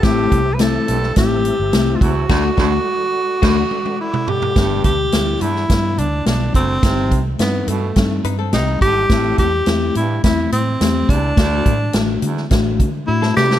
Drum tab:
CC |----------------|x-------x-------|----------------|----------------|
HH |x-x-x-x-x-x-x-x-|----------------|x-x-x-x-x-x-x-x-|x-x-x-x-x-x-x-x-|
SD |o---o--oo---o---|o-o-----o-------|o---o--oo---o---|o---o---o---o---|
T1 |----------------|----------oo----|----------------|----------------|
T2 |----------------|-------------o--|----------------|----------------|
FT |----------------|--------------oo|----------------|----------------|
BD |o-o-----o-----o-|o-o-----o-------|o-o-----o-----o-|o-o-----o-----o-|

CC |----------------|----------------|
HH |x-x-x-x-x-x-x-x-|x-x-x-x-x-x-----|
SD |o---o---o---o---|o---o--oo----ooo|
T1 |----------------|----------------|
T2 |----------------|----------------|
FT |----------------|----------------|
BD |o-o-----o-----o-|o-o-----o-o-----|